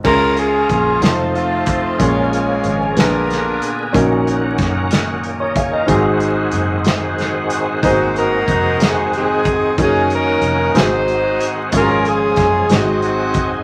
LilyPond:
<<
  \new Staff \with { instrumentName = "Saxophone section" } { \time 6/8 \key aes \mixolydian \tempo 4. = 62 << { bes'8 aes'4 f'8 f'4 | f'8 aes'4 bes'4 r8 | r2. | r2. |
c''8 bes'4 aes'8 aes'4 | aes'8 bes'4 c''4 r8 | bes'8 aes'4 ges'4. | } \\ { f'8 f'4 <a c'>8 <a c'>4 | <aes des'>8 <des' f'>4 <d' f'>4. | r2. | r2. |
<ees' ges'>8 <ees' ges'>4. <c' ees'>4 | <des' ees'>8 <des' ees'>4 <ees' ges'>4. | <des' f'>8 <des' f'>4 <c' ees'>4. | } >> }
  \new Staff \with { instrumentName = "Upright piano" } { \time 6/8 \key aes \mixolydian << { r2. | r2. | r2 r16 des''16 f''16 ees''16~ | ees''16 r2 r8. |
r2. | r2. | r2. | } \\ { <des' f' aes' bes'>4. <ees' f' a' c''>4. | <des' f' aes' bes'>4. <ces' d' aes' a' bes'>4. | <des' ees' ges' bes'>2. | <c' ees' ges' aes'>2. |
<bes c' ees' ges' aes'>2. | <des' ees' ges' bes'>4. <c' ees' ges' aes'>4. | <aes des' f' ges' aes'>4. <c' ees' ges' aes'>4. | } >> }
  \new Staff \with { instrumentName = "Upright piano" } { \clef bass \time 6/8 \key aes \mixolydian des4. r4. | bes,4. bes,4. | bes,4. r4. | aes,4. r4. |
aes,4. r4. | r4. aes,4. | aes,4. aes,4. | }
  \new Staff \with { instrumentName = "Tonewheel organ" } { \time 6/8 \key aes \mixolydian << { r2. | r2. | r2 r16 <bes' ees''>16 <aes' des''>16 <f' bes'>16~ | <f' bes'>16 r2 r8. |
r2. | r2. | r2. | } \\ { <aes des' f' bes'>4. <f c' ees' a'>4. | <f bes des' ges' aes'>4. <d ces' aes' bes'>4. | <ees bes des' f' ges'>2. | <ees aes c' ges'>2.~ |
<ees aes c' ges'>2. | <ees bes des' ges'>4. <ees aes c' f' ges'>4. | <f aes des' aes'>4. <ges ces' c' ees' aes'>4. | } >> }
  \new Staff \with { instrumentName = "Fingered electric bass" } { \clef bass \time 6/8 \key aes \mixolydian des,4 bes,,8 f,,4 r8 | bes,,4 aes,,8 bes,,4 r8 | bes,,4 ges,,2 | aes,,4 ges,,2 |
aes,,4 f,,2 | ges,,4 f,,8 aes,,4 r8 | aes,,4 ges,,8 aes,,4 r8 | }
  \new DrumStaff \with { instrumentName = "Drums" } \drummode { \time 6/8 <cymc bd>8 hh8 <hh bd>8 <hh sn>8 hh8 <hh bd>8 | <hh bd>8 hh8 hh8 <hh sn>8 <hh sn>8 hh8 | <hh bd>8 hh8 <hh bd sn>8 <hh sn>8 hh8 <hh bd>8 | <hh bd>8 hh8 hh8 <hh sn>8 <hh sn>8 hh8 |
<hh bd>8 hh8 <hh bd>8 <hh sn>8 hh8 <hh bd>8 | <hh bd>8 hh8 hh8 <hh sn>8 hh8 hh8 | <hh bd>8 hh8 <hh bd sn>8 <hh sn>8 hh8 <hh bd>8 | }
>>